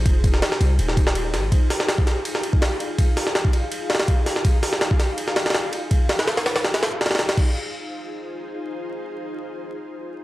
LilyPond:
<<
  \new Staff \with { instrumentName = "Ambient pad" } { \time 4/4 \key f \minor \tempo 4 = 164 << { c''1 | f''1~ | f''1~ | f''1~ |
f''1 | <ees' f' aes' c''>1~ | <ees' f' aes' c''>1 | } \\ { <ees' f' aes'>1~ | <ees' f' aes'>1~ | <ees' f' aes'>1~ | <ees' f' aes'>1~ |
<ees' f' aes'>1 | r1 | r1 | } >> }
  \new Staff \with { instrumentName = "808-style bass" } { \clef bass \time 4/4 \key f \minor f,,4 r8 c,8 ees,,4. aes,,8 | r1 | r1 | r1 |
r1 | r1 | r1 | }
  \new DrumStaff \with { instrumentName = "Drums" } \drummode { \time 4/4 <bd cymr>8 <bd cymr>16 sn16 <cymr sn>16 sn16 cymr8 cymr16 sn16 <bd cymr>16 sn16 cymr8 <cymr sn>8 | <bd cymr>8 <hho sn>16 sn16 <cymr sn>16 bd16 <cymr sn>8 cymr16 sn16 cymr16 bd16 <cymr sn>8 cymr8 | <bd cymr>8 <hho sn>16 sn16 <cymr sn>16 bd16 cymr8 cymr8 <cymr sn>32 <cymr sn>32 <cymr sn>16 <bd cymr>8 <hho sn>16 sn16 | <bd cymr>8 <hho sn>16 sn16 <cymr sn>16 bd16 <cymr sn>8 cymr16 sn16 <cymr sn>16 <cymr sn>32 <cymr sn>32 <cymr sn>8 cymr8 |
<bd cymr>8 <cymr sn>16 <cymr sn>16 <cymr sn>16 <cymr sn>16 <cymr sn>16 <cymr sn>16 <cymr sn>16 <cymr sn>16 <cymr sn>8 <cymr sn>32 <cymr sn>32 <cymr sn>32 <cymr sn>32 <cymr sn>16 <cymr sn>16 | <cymc bd>4 r4 r4 r4 | r4 r4 r4 r4 | }
>>